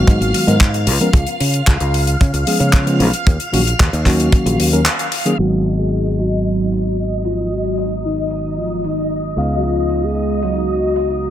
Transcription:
Already playing: tine electric piano D#3 F#3 G#3 B3 F#4, string machine F5 F6
0.07 fingered electric bass G#2, kick, closed hi-hat
0.21 fingered electric bass G#1, closed hi-hat
0.34 open hi-hat
0.47 fingered electric bass G#2, tine electric piano D#3 F#3 G#3 B3 A#4, closed hi-hat
0.60 kick, clap, closed hi-hat
0.74 closed hi-hat
0.87 fingered electric bass C#2, open hi-hat
1.00 tine electric piano F3 G#3 B3 C#4 A#4, closed hi-hat
1.13 fingered electric bass C#2, kick, closed hi-hat
1.27 closed hi-hat
1.40 fingered electric bass C#3, open hi-hat
1.54 closed hi-hat
1.67 fingered electric bass C#2, kick, clap, closed hi-hat
1.80 fingered electric bass C#2, closed hi-hat
1.94 open hi-hat
2.07 closed hi-hat
2.21 fingered electric bass C#3, kick, closed hi-hat
2.33 fingered electric bass C#2, closed hi-hat
2.46 tine electric piano F3 G#3 B3 C#4 G#4, open hi-hat
2.60 fingered electric bass C#3, closed hi-hat
2.73 kick, clap, closed hi-hat
2.86 tine electric piano F3 G#3 B3 C#4 F4, closed hi-hat
3.00 fingered electric bass B1, tine electric piano F3 G#3 B3 C#4 G#4, open hi-hat
3.13 closed hi-hat
3.27 fingered electric bass D#2, kick, closed hi-hat
3.40 closed hi-hat
3.52 fingered electric bass A#1, tine electric piano D#3 F#3 A#3 C#4 F#4, open hi-hat
3.67 closed hi-hat
3.80 fingered electric bass D#2, kick, clap, closed hi-hat
3.93 fingered electric bass D#2, closed hi-hat
4.05 tine electric piano D#3 F#3 A#3 C#4 F#4, kick, clap, open hi-hat
4.20 closed hi-hat
4.32 kick, closed hi-hat
4.46 fingered electric bass A#1, closed hi-hat
4.59 fingered electric bass D#2, open hi-hat
4.72 tine electric piano D#3 F#3 A#3 C#4 A#4, closed hi-hat
4.86 clap, closed hi-hat
4.99 closed hi-hat
5.12 open hi-hat
5.25 tine electric piano D#3 F#3 A#3 C#4 G#4, closed hi-hat
5.38 fingered electric bass G#1, tine electric piano D#3 F#3 G#3 B3 F#4, soft synth lead F#4, string machine D#5 D#6, crash
5.65 open hi-hat
5.79 soft synth lead G#4
6.18 soft synth lead F#4, open hi-hat
6.71 open hi-hat
7.25 soft synth lead F4, open hi-hat
7.51 soft synth lead F#4
7.78 open hi-hat
8.05 soft synth lead D#4
8.30 open hi-hat
8.58 soft synth lead F4
8.84 soft synth lead D#4, open hi-hat
9.36 fingered electric bass C#2, tine electric piano C#3 G#3 B3 F5, open hi-hat
9.57 soft synth lead F#4
9.63 soft synth lead F4
9.89 open hi-hat
10.03 soft synth lead G#4
10.43 soft synth lead F#4, open hi-hat
10.96 open hi-hat

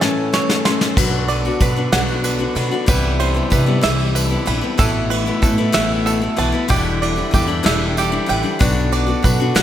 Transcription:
Already playing: harmonium E3 C#4 A4, five-string banjo C#5 E5
0.01 steel-string acoustic guitar A2 E3 A3 C#4 A4, five-string banjo A5, snare
0.33 steel-string acoustic guitar E3 A3 C#4 A4, five-string banjo C#5, snare
0.49 snare
0.65 steel-string acoustic guitar A3 C#4 A4, five-string banjo C6, snare
0.81 snare
0.96 upright bass B1, steel-string acoustic guitar B2 F#3 B3 D4 F#4, harmonium D3 D4 F#4, five-string banjo B4, kick, crash, tambourine
1.28 five-string banjo D5, ride
1.45 steel-string acoustic guitar B3 D4 F#4, tambourine
1.60 upright bass B2, steel-string acoustic guitar F#3 B3 D4 F#4, five-string banjo B4, kick, ride, tambourine
1.76 steel-string acoustic guitar B3 D4 F#4
1.92 upright bass B1, steel-string acoustic guitar B2 F#3 B3 D4 F#4, five-string banjo F#5, snare, ride, tambourine
2.08 tambourine
2.24 five-string banjo B4, ride, tambourine
2.39 steel-string acoustic guitar B3 D4 F#4
2.55 upright bass B2, steel-string acoustic guitar F#3 B3 D4 F#4, five-string banjo B5, ride, tambourine
2.71 steel-string acoustic guitar B3 D4 F#4
2.86 upright bass C2, steel-string acoustic guitar C3 E3 G3 B3 E4, harmonium C3 E4, five-string banjo B4, kick, ride, tambourine
3.20 five-string banjo C5, ride
3.34 steel-string acoustic guitar G3 B3 E4, tambourine
3.50 upright bass C3, steel-string acoustic guitar E3 G3 B3 E4, five-string banjo B4, kick, ride, tambourine
3.66 steel-string acoustic guitar G3 B3 E4
3.81 upright bass C2, steel-string acoustic guitar C3 E3 G3 E4, five-string banjo E5, snare, ride, tambourine
4.00 tambourine
4.15 five-string banjo B4, ride, tambourine
4.30 steel-string acoustic guitar G3 B3 E4
4.46 upright bass A#1, steel-string acoustic guitar E3 G3 B3 E4, five-string banjo B5, ride, tambourine
4.61 steel-string acoustic guitar G3 B3 E4
4.78 upright bass A1, steel-string acoustic guitar A2 E3 A3 B3 E4, harmonium B2 A3 E4, five-string banjo A4, kick, ride, tambourine
5.10 five-string banjo B4, ride
5.26 steel-string acoustic guitar A3 B3 E4, tambourine
5.42 upright bass A2, steel-string acoustic guitar E3 A3 B3 E4, five-string banjo A4, kick, ride, tambourine
5.58 steel-string acoustic guitar A3 B3 E4
5.72 upright bass A1, steel-string acoustic guitar A2 E3 A3 B3 E4, five-string banjo E5, snare, ride, tambourine
5.92 tambourine
6.06 five-string banjo A4, ride, tambourine
6.22 steel-string acoustic guitar A3 B3 E4
6.36 upright bass B1, steel-string acoustic guitar E3 A3 B3 E4, five-string banjo A5, ride, tambourine
6.52 steel-string acoustic guitar A3 B3 E4
6.68 upright bass E1, steel-string acoustic guitar E2 B2 E3 G3 D4 E4, harmonium D3 G3, five-string banjo G4, kick, ride, tambourine
7.02 five-string banjo D5, ride
7.16 steel-string acoustic guitar E3 G3 D4 E4, tambourine
7.31 upright bass E2, steel-string acoustic guitar E3 G3 D4 E4, five-string banjo G4, kick, ride, tambourine
7.48 steel-string acoustic guitar E3 G3 D4 E4
7.63 upright bass E1, steel-string acoustic guitar E2 B2 E3 G3 D4 E4, five-string banjo E5, snare, ride, tambourine
7.97 five-string banjo G4, ride, tambourine
8.12 steel-string acoustic guitar E3 G3 D4 E4
8.26 upright bass A1, steel-string acoustic guitar E3 G3 D4 E4, five-string banjo G5, ride, tambourine
8.43 steel-string acoustic guitar E3 G3 D4 E4, tambourine
8.59 upright bass B1, steel-string acoustic guitar B2 F#3 B3 D4 F#4, harmonium D3 D4 F#4, five-string banjo B4, kick, ride, tambourine
8.92 five-string banjo D5, ride
9.07 steel-string acoustic guitar B3 D4 F#4, tambourine
9.22 upright bass B2, steel-string acoustic guitar F#3 B3 D4 F#4, five-string banjo B4, kick, ride, tambourine
9.40 steel-string acoustic guitar B3 D4 F#4
9.55 upright bass B1, steel-string acoustic guitar B2 F#3 B3 D4 F#4, five-string banjo F#5, snare, ride, tambourine

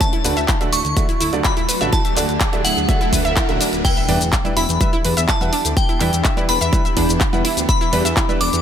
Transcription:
Already playing: ambient pad A3, riser
0.00 ambient pad F#3 D4, synth arpeggio sound E5, synth bell A5, kick, closed hi-hat, shaker
0.13 synth arpeggio sound E4, closed hi-hat, shaker
0.24 detuned saw bass D2, felt piano D3 A3 D4 F#4 D5, synth arpeggio sound B4, open hi-hat, shaker
0.37 detuned saw bass D2, synth arpeggio sound E5, closed hi-hat, shaker
0.48 synth arpeggio sound E4, kick, clap, closed hi-hat, shaker
0.61 felt piano D3 A3 D4 F#4 D5, synth arpeggio sound E5, closed hi-hat, shaker
0.73 detuned saw bass D1, synth arpeggio sound D4, synth bell C#6, open hi-hat, shaker
0.85 detuned saw bass D2, closed hi-hat, shaker
0.96 felt piano D3 A3 D4 F#4 E5, kick, closed hi-hat, shaker
1.09 synth arpeggio sound E4, closed hi-hat, shaker
1.20 detuned saw bass D2, synth arpeggio sound E4, open hi-hat, shaker
1.33 detuned saw bass D2, felt piano D3 A3 D4 F#4 D5, closed hi-hat, shaker
1.44 synth arpeggio sound E5, synth bell B5, kick, clap, closed hi-hat, shaker
1.57 detuned saw bass D2, synth arpeggio sound E4, closed hi-hat, shaker
1.69 synth arpeggio sound B4, open hi-hat, shaker
1.81 detuned saw bass A1, felt piano D3 A3 D4 F#4 D5, synth arpeggio sound E5, closed hi-hat, shaker
1.93 synth arpeggio sound E4, synth bell A5, kick, closed hi-hat, shaker
2.05 synth arpeggio sound E5, closed hi-hat, shaker
2.16 detuned saw bass D2, felt piano D3 A3 D4 F#4 D5, synth arpeggio sound D4, clap, open hi-hat, shaker
2.29 detuned saw bass D2, closed hi-hat, shaker
2.40 kick, clap, closed hi-hat, shaker
2.53 felt piano D3 A3 D4 F#4 D5, synth arpeggio sound E4, closed hi-hat, shaker
2.64 detuned saw bass D1, synth arpeggio sound E4, synth bell F#5, open hi-hat, shaker
2.77 detuned saw bass D2, closed hi-hat, shaker
2.88 felt piano D3 A3 D4 F#4 E5, synth arpeggio sound E5, kick, closed hi-hat, swell, shaker
3.01 synth arpeggio sound E4, closed hi-hat, shaker
3.13 detuned saw bass D2, synth arpeggio sound B4, kick, open hi-hat, shaker
3.25 detuned saw bass D2, synth arpeggio sound E5, closed hi-hat, shaker
3.36 synth arpeggio sound E4, kick, clap, closed hi-hat, shaker
3.49 detuned saw bass A1, felt piano D3 A3 D4 F#4 F#5, synth arpeggio sound E5, closed hi-hat, shaker
3.61 synth arpeggio sound D4, open hi-hat, shaker
3.73 detuned saw bass D1, closed hi-hat, shaker
3.85 ambient pad E3 B3 D4 E4 G4, synth arpeggio sound E4 E5, synth bell G5, kick, closed hi-hat, crash, impact, shaker
3.97 synth arpeggio sound E5 E6, closed hi-hat, shaker
4.08 detuned saw bass E2, felt piano G3 E4 B4 D5, synth arpeggio sound D4 D5, open hi-hat
4.21 detuned saw bass E2, closed hi-hat, shaker
4.33 kick, clap, closed hi-hat, shaker
4.45 felt piano G3 E4 B4 D5, synth arpeggio sound E4 E5, closed hi-hat, shaker
4.57 detuned saw bass E1, synth arpeggio sound E4 E5, synth bell B5, open hi-hat
4.69 detuned saw bass E2, closed hi-hat, shaker
4.81 felt piano G3 E4 B4 E5, synth arpeggio sound E5 E6, kick, closed hi-hat, shaker
4.93 synth arpeggio sound E4 E5, closed hi-hat, shaker
5.05 detuned saw bass E2, synth arpeggio sound B4 B5, open hi-hat
5.17 detuned saw bass E2, synth arpeggio sound E5 E6, closed hi-hat, shaker
5.28 synth arpeggio sound E4 E5, synth bell A5, kick, clap, closed hi-hat, shaker
5.41 detuned saw bass E2, felt piano G3 E4 B4 F#5, synth arpeggio sound E5 E6, closed hi-hat, shaker
5.53 synth arpeggio sound D4 D5, open hi-hat
5.65 detuned saw bass D2, closed hi-hat, shaker
5.77 synth bell G5, kick, closed hi-hat, shaker
5.89 synth arpeggio sound E4 E5, closed hi-hat, shaker
6.00 detuned saw bass E2, felt piano G3 E4 B4 D5, synth arpeggio sound E4 E5, clap, open hi-hat
6.13 detuned saw bass E2, closed hi-hat, shaker
6.24 synth arpeggio sound E5 E6, kick, clap, closed hi-hat, shaker
6.37 felt piano G3 E4 B4 D5, synth arpeggio sound E4 E5, closed hi-hat, shaker
6.49 detuned saw bass E1, synth arpeggio sound B4 B5, synth bell B5, open hi-hat
6.61 detuned saw bass E2, synth arpeggio sound E5 E6, closed hi-hat, shaker
6.72 felt piano G3 E4 B4 E5, synth arpeggio sound E4 E5, kick, closed hi-hat, shaker
6.85 synth arpeggio sound E5 E6, closed hi-hat, shaker
6.97 detuned saw bass E2, synth arpeggio sound D4 D5, kick, open hi-hat
7.09 detuned saw bass E2, closed hi-hat, shaker
7.21 kick, clap, closed hi-hat, shaker
7.33 detuned saw bass E2, felt piano G3 E4 B4 F#5, synth arpeggio sound E4 E5, closed hi-hat, shaker
7.45 synth arpeggio sound E4 E5, open hi-hat
7.57 detuned saw bass D2, closed hi-hat, shaker
7.69 ambient pad E4, synth arpeggio sound E5 E6, synth bell B5, kick, closed hi-hat, shaker
7.81 synth arpeggio sound E4 E5, closed hi-hat, shaker
7.93 detuned saw bass E2, felt piano G3 E4 B4 D5, synth arpeggio sound B4 B5, open hi-hat
8.05 detuned saw bass E2, synth arpeggio sound E5 E6, closed hi-hat, shaker
8.17 synth arpeggio sound E4 E5, kick, clap, closed hi-hat, shaker
8.29 felt piano G3 E4 B4 D5, synth arpeggio sound E5 E6, closed hi-hat, shaker
8.41 detuned saw bass E1, synth arpeggio sound D4 D5, synth bell D6, open hi-hat
8.53 detuned saw bass E2, closed hi-hat, shaker

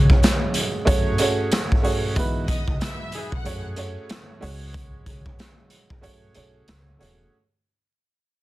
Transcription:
Already playing: upright piano G#3 C#4 F#4 G#4 C#5
0.10 kick
0.23 cross-stick, snare, closed hi-hat, sleigh bells
0.54 closed hi-hat, sleigh bells
0.85 upright bass F#2, upright piano A3 C#4 F#4 G#4 C#5, kick, closed hi-hat, sleigh bells
1.18 upright piano A3 C#4 F#4 G#4 C#5, closed hi-hat, sleigh bells
1.52 cross-stick, snare, closed hi-hat, sleigh bells
1.72 kick
1.82 upright piano A3 C#4 F#4 G#4 C#5, sleigh bells
1.86 open hi-hat
2.16 upright bass E2, upright piano G#3 D#4 E4 F#4 B4, kick, closed hi-hat, sleigh bells
2.47 violin section D#5 D#6, kick, closed hi-hat, sleigh bells
2.68 upright bass C#2, kick
2.81 violin section E5 E6, cross-stick, snare, closed hi-hat, sleigh bells
3.12 saxophone section E3 D#4 G#4, closed hi-hat, sleigh bells
3.31 upright bass B1, violin section F#5 F#6, kick
3.44 upright bass F#2, upright piano A3 C#4 F#4 G#4 C#5, closed hi-hat, sleigh bells
3.76 upright piano A3 C#4 F#4 G#4 C#5, closed hi-hat, sleigh bells
4.09 cross-stick, snare, closed hi-hat, sleigh bells
4.41 upright bass C#2, upright piano G#3 C#4 F#4 G#4 C#5, open hi-hat, sleigh bells
4.74 kick, closed hi-hat, sleigh bells
5.06 upright bass C#2, kick, closed hi-hat, sleigh bells
5.26 kick
5.39 cross-stick, snare, closed hi-hat, sleigh bells
5.70 closed hi-hat, sleigh bells
5.90 kick
6.01 upright bass F#2, upright piano A3 C#4 F#4 G#4 C#5, closed hi-hat, sleigh bells
6.35 upright bass B1, upright piano A3 C#4 F#4 G#4 C#5, closed hi-hat, sleigh bells
6.68 upright bass C#2, cross-stick, snare, closed hi-hat, sleigh bells
6.98 upright bass E1, upright piano A3 C#4 F#4 G#4 C#5, sleigh bells
7.02 closed hi-hat

